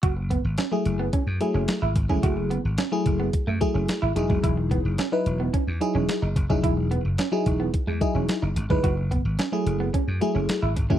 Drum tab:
HH |x-x-x-x-x-x-x-x-|x-x-x-x-x-x-x-x-|x-x-x-x-x-x-x-x-|x-x-x-x-x-x-x-x-|
SD |----o-------o---|----o-------o---|----o-------o---|----o-------o---|
BD |o-o-----o-----oo|o-----o-o-o----o|o-o-----o-----oo|o-----o-o-o----o|

HH |x-x-x-x-x-x-x-x-|
SD |----o-------o---|
BD |o-o-----o-----oo|